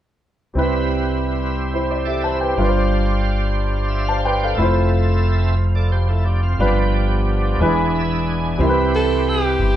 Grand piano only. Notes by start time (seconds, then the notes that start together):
0.54 C3 G3 C4 E4
0.58 B4
1.73 E4 C5
1.91 D5
2.07 G4 E5
2.24 C5 A5
2.41 B4 G5
2.56 G2 G3 D4 F4
2.61 B4
2.68 C5
4.08 C5 A5
4.25 B4 G5
4.43 A4 F5
4.57 A3 E4 F4
4.62 C5
6.59 G2 G3 D4 F4 B4
7.60 E3 G#3 D4 E4 B4
8.57 C3 G3 C4 E4
8.62 A#4
8.69 B4